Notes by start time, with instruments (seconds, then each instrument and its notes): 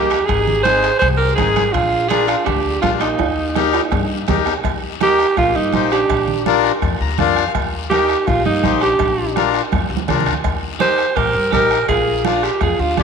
Already playing: upright bass D#2, accordion A#3 D#4 G4, clean electric guitar D#4, alto saxophone G4
0.10 bombo rim, high timbale, short guiro
0.26 upright bass G#1, clean electric guitar D#4, alto saxophone G#4, bombo low, bombo rim, high timbale, long guiro
0.48 high conga, low conga
0.62 accordion C4 D#4 G#4, clean electric guitar G#4, alto saxophone C5, bombo rim, high conga, high timbale, short guiro
0.83 bombo rim, high timbale, short guiro
0.99 upright bass C2, clean electric guitar G#4, alto saxophone C5, bombo low, bombo rim, high conga, high timbale, long guiro
1.17 clean electric guitar G4, alto saxophone A#4
1.35 upright bass G#1, accordion C4 D#4 G#4, clean electric guitar D#4, alto saxophone G#4, bombo low, bombo rim, high conga, low conga, high timbale, short guiro
1.55 bombo rim, high conga, high timbale, short guiro
1.72 upright bass A#1, clean electric guitar D4, alto saxophone F4, bombo low, bombo rim, high timbale, long guiro
1.93 high conga
2.08 accordion D4 F4 A#4, clean electric guitar F4, alto saxophone G#4, bombo rim, high conga, high timbale, short guiro
2.27 clean electric guitar D4, alto saxophone F4, bombo rim, high timbale, short guiro
2.44 upright bass D2, clean electric guitar D4, alto saxophone G4, bombo low, bombo rim, high conga, high timbale, long guiro
2.81 upright bass A#1, clean electric guitar D4, accordion D4 F4 A#4, alto saxophone F4, bombo low, bombo rim, high conga, high timbale, low timbale, short guiro
2.99 clean electric guitar A#3, alto saxophone D#4, bombo rim, high timbale, short guiro
3.18 upright bass D#2, bombo low, bombo rim, high timbale, long guiro
3.38 high conga
3.55 accordion D#4 G4 A#4, bombo rim, high conga, low timbale, short guiro
3.73 bombo rim, high timbale, short guiro
3.91 upright bass G2, bombo low, bombo rim, high conga, low timbale, long guiro
4.27 upright bass D#2, accordion D#4 G4 A#4, bombo low, bombo rim, high conga, low conga, low timbale, short guiro
4.45 bombo rim, low timbale, short guiro
4.63 upright bass D#2, bombo low, bombo rim, cowbell, long guiro
4.84 high conga
5.00 clean electric guitar D#4, accordion D#4 G4 A#4, alto saxophone G4, bombo rim, high conga, short guiro
5.18 bombo rim, short guiro
5.36 upright bass A#1, clean electric guitar A#3, alto saxophone F4, bombo low, bombo rim, cowbell, high conga, long guiro
5.55 upright bass G2, clean electric guitar A#3, alto saxophone D#4
5.73 upright bass A#1, accordion D#4 G4 C5, bombo rim, high conga, short guiro
5.91 clean electric guitar D4, alto saxophone G4, bombo rim, short guiro
6.09 upright bass A#1, bombo low, bombo rim, cowbell, long guiro
6.28 high conga, low conga
6.46 accordion D4 F4 A#4, bombo rim, high conga, short guiro
6.64 bombo rim, short guiro
6.82 upright bass F2, bombo low, bombo rim, cowbell, high conga, long guiro
7.00 upright bass D2, accordion A#5
7.18 upright bass F2, accordion D4 F4 A#4 F5, bombo low, bombo rim, high conga, low conga, short guiro
7.36 bombo rim, short guiro
7.55 upright bass D#2, bombo low, bombo rim, cowbell, long guiro
7.73 high conga
7.90 clean electric guitar D#4, accordion D#4 G4 A#4, alto saxophone G4, bombo rim, high conga, short guiro
8.09 bombo rim, short guiro
8.27 upright bass A#1, clean electric guitar A#3, alto saxophone F4, bombo low, bombo rim, cowbell, high conga, long guiro
8.45 upright bass G2, clean electric guitar A#3, alto saxophone D#4, high conga
8.63 upright bass A#1, accordion D#4 G4 C5, bombo low, bombo rim, high conga, short guiro
8.81 clean electric guitar D4, alto saxophone G4, bombo rim, short guiro
8.99 upright bass A#1, bombo low, bombo rim, cowbell, long guiro
9.18 high conga
9.36 accordion D4 F4 A#4, bombo rim, high conga, short guiro
9.54 bombo rim, short guiro
9.72 upright bass F2, bombo low, bombo rim, cowbell, high conga, long guiro
9.90 upright bass D2
9.97 high conga
10.08 upright bass C2, accordion D4 F4 A#4, bombo low, bombo rim, low conga, low timbale, short guiro
10.20 low conga
10.26 upright bass D2, bombo rim, short guiro
10.33 low conga
10.44 upright bass D#2, bombo low, bombo rim, cowbell, long guiro
10.63 high conga
10.79 accordion D#4 G4 A#4, clean electric guitar G4, alto saxophone C5, bombo rim, high conga, short guiro
10.98 bombo rim, short guiro
11.16 upright bass A#1, clean electric guitar G4, alto saxophone A#4, bombo low, bombo rim, cowbell, high conga, long guiro
11.34 upright bass G2
11.51 upright bass A#1, accordion D#4 G4 A#4, clean electric guitar G4, alto saxophone A#4, bombo low, bombo rim, high conga, short guiro
11.71 bombo rim, short guiro
11.88 upright bass A#1, clean electric guitar F4, alto saxophone G#4, bombo low, bombo rim, cowbell, long guiro
12.07 high conga
12.25 accordion D4 F4 A#4, clean electric guitar D4, alto saxophone F4, bombo rim, high conga, short guiro
12.43 clean electric guitar D#4, alto saxophone G4, bombo rim, short guiro
12.61 upright bass F2, clean electric guitar F4, alto saxophone G#4, bombo low, bombo rim, cowbell, high conga, long guiro
12.79 upright bass D2, clean electric guitar D4, alto saxophone F4
12.97 upright bass F2, accordion D4 F4 G#4, clean electric guitar D4, alto saxophone G4, bombo low, bombo rim, high conga, low conga, short guiro